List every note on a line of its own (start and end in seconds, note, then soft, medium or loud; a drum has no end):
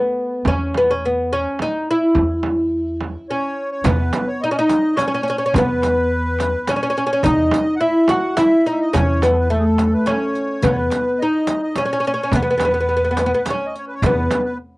0.00 0.48 B3 medium
0.45 1.44 E2 medium
0.45 0.76 C#4 medium
0.45 frame drum medium
0.74 0.90 B3 medium
0.74 frame drum medium
0.91 1.04 C#4 medium
1.05 1.30 B3 medium
1.33 1.61 C#4 medium
1.59 1.89 D#4 medium
1.59 frame drum medium
1.91 3.26 E4 medium
2.15 3.14 E2 medium
2.15 frame drum medium
2.43 frame drum medium
3.01 frame drum medium
3.29 3.88 C#4 medium
3.29 3.70 C#5 medium
3.72 3.86 C#5 medium
3.84 4.09 E2 loud
3.84 4.44 B3 medium
3.84 4.28 B4 medium
3.84 riq medium
3.84 darbuka dum medium
3.84 frame drum medium
4.13 riq soft
4.13 darbuka tek medium
4.13 frame drum medium
4.28 4.42 C#5 medium
4.41 4.50 D#4 medium
4.41 4.53 D#5 medium
4.51 4.57 C#4 medium
4.51 4.99 D#5 medium
4.59 4.97 D#4 medium
4.69 riq soft
4.69 darbuka tek medium
4.69 frame drum medium
4.95 5.05 C#4 medium
4.95 5.37 C#5 medium
4.95 riq soft
4.95 darbuka tek medium
4.95 frame drum medium
5.08 5.13 C#4 medium
5.14 5.21 C#4 medium
5.23 5.29 C#4 medium
5.28 5.36 C#4 medium
5.28 riq soft
5.38 5.44 C#4 medium
5.38 5.54 C#5 medium
5.46 5.52 C#4 medium
5.54 6.54 E2 medium
5.54 6.71 B4 medium
5.54 riq medium
5.54 darbuka dum medium
5.54 frame drum medium
5.58 6.72 B3 medium
5.82 riq soft
5.82 darbuka tek medium
5.82 frame drum medium
6.39 riq soft
6.39 darbuka tek medium
6.39 frame drum medium
6.67 6.75 C#4 medium
6.67 7.08 C#5 medium
6.67 riq soft
6.67 darbuka tek medium
6.67 frame drum medium
6.76 6.82 C#4 medium
6.83 6.89 C#4 medium
6.90 6.96 C#4 medium
6.97 7.05 C#4 medium
6.97 riq soft
7.07 7.11 C#4 medium
7.07 7.24 C#5 medium
7.13 7.20 C#4 medium
7.23 7.49 E2 loud
7.23 7.80 D#4 loud
7.23 7.75 D#5 medium
7.23 riq medium
7.23 frame drum medium
7.23 darbuka dum medium
7.51 riq soft
7.51 darbuka tek medium
7.51 frame drum medium
7.76 8.09 E5 medium
7.76 7.82 F#5 medium
7.81 8.09 E4 medium
8.08 8.36 F#4 medium
8.08 8.38 F#5 medium
8.08 riq soft
8.08 darbuka tek medium
8.08 frame drum medium
8.37 8.66 E4 loud
8.37 8.66 E5 medium
8.37 riq soft
8.37 darbuka tek medium
8.37 frame drum medium
8.66 8.93 D#4 medium
8.66 8.73 D#5 medium
8.66 riq soft
8.73 8.79 E5 medium
8.81 8.95 D#5 medium
8.93 9.93 E2 medium
8.93 9.22 C#4 medium
8.93 9.23 C#5 medium
8.93 riq medium
8.93 frame drum medium
8.93 darbuka dum medium
9.22 9.50 B3 medium
9.22 9.30 B4 medium
9.22 riq soft
9.22 darbuka tek medium
9.22 frame drum medium
9.31 9.37 A4 medium
9.40 9.52 B4 medium
9.50 10.08 A3 medium
9.50 9.59 A4 medium
9.50 riq soft
9.59 9.65 G#4 medium
9.65 9.93 A4 medium
9.78 riq soft
9.78 darbuka tek medium
9.78 frame drum medium
9.93 10.07 B4 medium
10.06 10.65 C#4 medium
10.06 10.65 C#5 medium
10.06 riq soft
10.06 darbuka tek medium
10.06 frame drum medium
10.35 riq soft
10.35 darbuka ka soft
10.62 10.88 E2 loud
10.62 11.21 B3 medium
10.62 10.70 B4 medium
10.62 riq medium
10.62 darbuka dum medium
10.62 frame drum medium
10.70 10.77 C#5 medium
10.75 11.20 B4 medium
10.90 riq soft
10.90 darbuka tek medium
10.90 frame drum medium
11.19 11.77 D#4 medium
11.19 11.61 D#5 medium
11.47 riq medium
11.47 darbuka tek medium
11.47 frame drum medium
11.63 11.77 D#5 medium
11.76 11.84 C#4 medium
11.76 12.34 C#5 medium
11.76 riq soft
11.76 darbuka tek medium
11.76 frame drum medium
11.85 11.92 C#4 medium
11.93 11.99 C#4 medium
12.00 12.06 C#4 medium
12.04 12.13 C#4 medium
12.04 riq soft
12.14 12.21 C#4 medium
12.23 12.30 C#4 medium
12.31 13.31 E2 medium
12.31 13.48 B4 medium
12.31 riq medium
12.31 frame drum medium
12.31 darbuka dum medium
12.35 12.41 B3 medium
12.43 12.49 B3 medium
12.51 12.56 B3 medium
12.58 12.64 B3 medium
12.58 riq medium
12.58 darbuka tek medium
12.58 frame drum medium
12.65 12.71 B3 medium
12.74 12.79 B3 soft
12.80 12.86 B3 medium
12.89 12.94 B3 soft
12.97 13.02 B3 medium
13.04 13.10 B3 soft
13.11 13.17 B3 medium
13.17 13.24 B3 medium
13.17 riq medium
13.17 darbuka tek medium
13.17 frame drum medium
13.26 13.32 B3 medium
13.34 13.40 B3 medium
13.45 13.66 C#5 medium
13.45 riq medium
13.45 darbuka tek medium
13.45 frame drum medium
13.50 14.06 C#4 medium
13.66 13.75 D#5 medium
13.76 13.85 C#5 medium
13.76 riq soft
13.88 13.95 B4 medium
13.95 14.03 C#5 medium
14.02 14.27 E2 loud
14.02 14.57 B3 medium
14.02 14.42 B4 medium
14.02 riq medium
14.02 darbuka dum medium
14.02 frame drum medium
14.30 riq medium
14.30 darbuka tek medium
14.30 frame drum medium
14.45 14.58 B4 medium